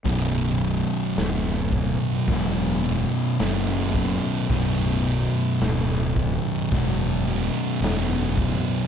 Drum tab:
HH |o-o-o-o-|o-o-o-o-|
SD |--o---o-|--o---o-|
BD |o--oo--o|o--oo--o|